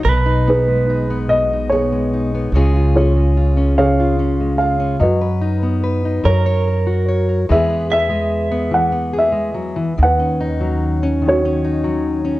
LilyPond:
<<
  \new Staff \with { instrumentName = "Grand piano" } { \time 6/8 \key b \major \tempo 4. = 48 << { r8 b'4 dis''8 cis''4 | r8 cis''4 eis''4 eis''8 | dis''4. cis''4. | e''8 e''4 fis''8 e''4 |
fis''4. cis''4. | } \\ { r8 <dis' gis'>4. gis'4 | r8 <eis' gis'>4 <gis' cis''>4. | <fis' b'>4. ais'4. | gis'4. r4. |
b'4. fis'4. | } >> }
  \new Staff \with { instrumentName = "Clean electric guitar" } { \time 6/8 \key b \major b'4. r4. | r2. | r4. ais'4. | r8 e''4. r4 |
r2. | }
  \new Staff \with { instrumentName = "Steel-string acoustic guitar" } { \time 6/8 \key b \major << { r16 dis'16 b8 dis'16 b8 dis'16 b8 dis'16 b16 | <gis cis' eis' gis'>16 eis'16 cis'8 eis'16 cis'8 eis'16 cis'8 eis'16 cis'16 | r16 b'16 dis'8 b'16 dis'16 r16 cis''16 ais'8 cis''16 ais'16 | <gis b gis' b'>16 b16 gis'8. b8 b16 gis'4 |
r16 cis'16 dis'8. cis'8 cis'16 dis'8. cis'16 | } \\ { b,8. gis8. b,8. gis8. | cis8. gis8. cis8. gis8. | fis8. b8. fis8. fis'8. | e8. gis8. e8. gis16 fis16 e16 |
dis8. fis8. dis8. fis8. | } >> }
  \new Staff \with { instrumentName = "Upright bass" } { \clef bass \time 6/8 \key b \major b,,2. | cis,2. | fis,4. fis,4. | e,2. |
dis,2. | }
>>